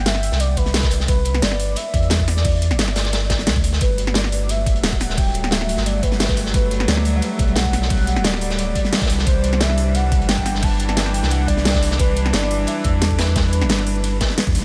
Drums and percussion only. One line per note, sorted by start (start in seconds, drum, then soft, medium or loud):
0.06 snare loud
0.06 closed hi-hat medium
0.06 ride medium
0.15 snare soft
0.15 closed hi-hat soft
0.23 closed hi-hat medium
0.23 open hi-hat medium
0.23 ride medium
0.32 snare medium
0.40 closed hi-hat medium
0.40 ride medium
0.57 kick medium
0.57 closed hi-hat medium
0.57 ride medium
0.66 snare soft
0.66 closed hi-hat soft
0.74 snare loud
0.74 snare medium
0.74 closed hi-hat loud
0.74 closed hi-hat medium
0.74 ride medium
0.78 snare loud
0.78 closed hi-hat medium
0.83 kick loud
0.83 snare loud
0.83 closed hi-hat soft
0.83 closed hi-hat medium
0.91 closed hi-hat medium
0.91 open hi-hat medium
0.91 ride medium
1.00 snare medium
1.08 kick loud
1.08 closed hi-hat loud
1.08 closed hi-hat medium
1.08 ride medium
1.25 closed hi-hat medium
1.25 ride medium
1.34 snare medium
1.34 closed hi-hat soft
1.42 snare loud
1.42 closed hi-hat loud
1.42 closed hi-hat medium
1.42 ride medium
1.51 snare soft
1.60 closed hi-hat medium
1.60 open hi-hat medium
1.60 ride medium
1.76 closed hi-hat loud
1.76 closed hi-hat medium
1.76 ride medium
1.94 kick loud
1.94 closed hi-hat medium
1.94 ride medium
2.03 closed hi-hat soft
2.10 snare loud
2.10 closed hi-hat medium
2.10 closed hi-hat loud
2.10 ride medium
2.20 kick medium
2.20 closed hi-hat soft
2.28 snare soft
2.28 closed hi-hat medium
2.28 open hi-hat medium
2.28 ride medium
2.37 snare medium
2.45 kick loud
2.45 closed hi-hat loud
2.45 open hi-hat medium
2.45 ride medium
2.62 closed hi-hat medium
2.62 ride medium
2.71 snare medium
2.71 closed hi-hat soft
2.79 snare loud
2.79 closed hi-hat loud
2.79 closed hi-hat medium
2.79 ride medium
2.88 snare soft
2.88 closed hi-hat soft
2.96 snare loud
2.96 closed hi-hat medium
2.96 open hi-hat medium
2.96 ride medium
3.05 snare medium
3.05 closed hi-hat soft
3.13 snare loud
3.13 closed hi-hat medium
3.13 closed hi-hat loud
3.13 ride medium
3.30 kick medium
3.30 snare loud
3.30 closed hi-hat medium
3.30 ride medium
3.39 snare soft
3.39 closed hi-hat soft
3.47 snare loud
3.47 closed hi-hat loud
3.47 closed hi-hat medium
3.47 ride medium
3.56 kick loud
3.56 closed hi-hat soft
3.64 closed hi-hat medium
3.64 open hi-hat medium
3.64 ride medium
3.73 snare medium
3.81 kick loud
3.81 closed hi-hat loud
3.81 closed hi-hat medium
3.81 ride medium
3.98 closed hi-hat medium
3.98 ride medium
4.07 snare medium
4.07 closed hi-hat soft
4.14 snare loud
4.14 closed hi-hat medium
4.14 ride medium
4.24 snare soft
4.32 closed hi-hat medium
4.32 open hi-hat medium
4.32 ride medium
4.49 closed hi-hat loud
4.49 closed hi-hat medium
4.49 ride medium
4.66 kick loud
4.66 closed hi-hat medium
4.66 ride medium
4.76 closed hi-hat soft
4.83 snare loud
4.83 closed hi-hat medium
4.83 closed hi-hat loud
4.83 ride medium
4.92 kick medium
4.92 closed hi-hat soft
5.00 snare medium
5.00 closed hi-hat medium
5.00 open hi-hat medium
5.00 ride medium
5.10 snare medium
5.17 kick loud
5.17 closed hi-hat loud
5.17 open hi-hat medium
5.17 ride medium
5.34 closed hi-hat medium
5.34 ride medium
5.44 snare medium
5.44 closed hi-hat soft
5.51 snare loud
5.51 closed hi-hat medium
5.51 ride medium
5.61 snare medium
5.61 closed hi-hat soft
5.69 closed hi-hat medium
5.69 open hi-hat medium
5.69 ride medium
5.77 snare medium
5.86 closed hi-hat medium
5.86 ride medium
6.03 kick medium
6.03 closed hi-hat medium
6.03 ride medium
6.12 snare soft
6.12 closed hi-hat soft
6.20 snare loud
6.20 snare medium
6.20 closed hi-hat medium
6.20 closed hi-hat loud
6.20 ride medium
6.24 snare medium
6.24 closed hi-hat medium
6.28 kick loud
6.28 snare loud
6.28 closed hi-hat soft
6.28 closed hi-hat medium
6.37 closed hi-hat medium
6.37 open hi-hat medium
6.37 ride medium
6.46 snare soft
6.54 kick loud
6.54 closed hi-hat medium
6.54 ride medium
6.71 closed hi-hat medium
6.71 ride medium
6.80 snare medium
6.80 closed hi-hat soft
6.88 snare loud
6.88 closed hi-hat medium
6.88 ride medium
6.97 snare medium
7.05 closed hi-hat medium
7.05 open hi-hat medium
7.05 ride medium
7.22 closed hi-hat medium
7.22 ride medium
7.39 kick loud
7.39 closed hi-hat medium
7.39 ride soft
7.48 closed hi-hat soft
7.56 snare loud
7.56 closed hi-hat medium
7.56 ride medium
7.65 kick medium
7.65 closed hi-hat soft
7.73 snare soft
7.73 closed hi-hat medium
7.73 open hi-hat medium
7.73 ride medium
7.82 snare medium
7.90 kick loud
7.90 closed hi-hat medium
7.90 open hi-hat medium
7.90 ride medium
8.07 closed hi-hat medium
8.07 ride medium
8.16 snare medium
8.16 closed hi-hat soft
8.24 snare loud
8.24 closed hi-hat medium
8.24 ride medium
8.33 snare soft
8.33 closed hi-hat soft
8.41 closed hi-hat medium
8.41 open hi-hat medium
8.41 ride medium
8.50 snare medium
8.50 closed hi-hat soft
8.59 closed hi-hat medium
8.59 closed hi-hat loud
8.59 ride medium
8.75 kick medium
8.75 closed hi-hat medium
8.75 ride medium
8.85 snare soft
8.85 closed hi-hat soft
8.93 snare loud
8.93 closed hi-hat medium
8.93 ride medium
8.97 snare medium
8.97 closed hi-hat medium
9.01 kick loud
9.01 snare medium
9.01 closed hi-hat soft
9.01 closed hi-hat medium
9.05 snare medium
9.05 closed hi-hat medium
9.10 closed hi-hat medium
9.10 open hi-hat medium
9.10 ride medium
9.19 snare medium
9.27 kick loud
9.27 closed hi-hat medium
9.27 ride medium
9.44 closed hi-hat medium
9.44 ride medium
9.53 snare medium
9.53 closed hi-hat soft
9.60 snare loud
9.60 closed hi-hat medium
9.60 ride medium
9.70 snare soft
9.78 closed hi-hat medium
9.78 open hi-hat medium
9.78 ride medium
9.95 closed hi-hat medium
9.95 ride medium
10.12 kick loud
10.12 closed hi-hat medium
10.12 ride medium
10.22 closed hi-hat soft
10.29 snare loud
10.29 closed hi-hat medium
10.29 ride medium
10.38 kick medium
10.38 closed hi-hat soft
10.46 snare soft
10.46 closed hi-hat medium
10.46 open hi-hat medium
10.46 ride medium
10.55 snare medium
10.63 kick loud
10.63 closed hi-hat loud
10.63 open hi-hat medium
10.63 ride medium
10.80 closed hi-hat medium
10.80 ride medium
10.88 snare medium
10.88 closed hi-hat soft
10.97 snare loud
10.97 closed hi-hat medium
10.97 ride medium
11.06 snare soft
11.06 closed hi-hat soft
11.14 closed hi-hat medium
11.14 open hi-hat medium
11.14 ride medium
11.23 snare medium
11.31 closed hi-hat medium
11.31 ride medium
11.48 kick medium
11.48 closed hi-hat medium
11.48 ride medium
11.57 snare soft
11.57 closed hi-hat soft
11.65 snare loud
11.65 snare medium
11.65 closed hi-hat medium
11.65 closed hi-hat loud
11.65 ride medium
11.70 snare medium
11.70 closed hi-hat medium
11.74 kick loud
11.74 snare loud
11.74 closed hi-hat medium
11.74 closed hi-hat soft
11.83 closed hi-hat medium
11.83 open hi-hat medium
11.83 ride medium
11.91 snare medium
11.99 kick loud
11.99 closed hi-hat medium
11.99 closed hi-hat loud
11.99 ride medium
12.17 closed hi-hat medium
12.17 ride medium
12.26 snare medium
12.26 closed hi-hat soft
12.33 snare loud
12.33 closed hi-hat loud
12.33 ride medium
12.43 snare soft
12.51 open hi-hat medium
12.51 ride medium
12.67 closed hi-hat medium
12.67 closed hi-hat loud
12.67 ride medium
12.84 kick loud
12.84 closed hi-hat medium
12.84 ride medium
13.02 snare loud
13.02 closed hi-hat medium
13.02 closed hi-hat loud
13.02 ride medium
13.10 kick medium
13.10 closed hi-hat soft
13.19 snare loud
13.19 snare soft
13.19 closed hi-hat medium
13.19 open hi-hat medium
13.19 ride medium
13.28 closed hi-hat soft
13.36 kick loud
13.36 snare loud
13.36 closed hi-hat loud
13.36 closed hi-hat medium
13.36 ride medium
13.53 closed hi-hat medium
13.53 ride medium
13.61 snare medium
13.61 closed hi-hat soft
13.69 snare loud
13.69 closed hi-hat medium
13.69 closed hi-hat loud
13.69 ride medium
13.78 snare soft
13.78 closed hi-hat soft
13.87 open hi-hat medium
13.87 ride medium
13.96 closed hi-hat soft
14.04 closed hi-hat medium
14.04 closed hi-hat loud
14.04 ride medium
14.21 kick medium
14.21 snare loud
14.21 closed hi-hat medium
14.21 ride medium
14.30 snare soft
14.38 snare loud
14.38 closed hi-hat loud
14.38 closed hi-hat medium
14.38 ride medium
14.47 kick loud
14.47 closed hi-hat soft
14.55 closed hi-hat medium
14.55 open hi-hat medium
14.55 ride medium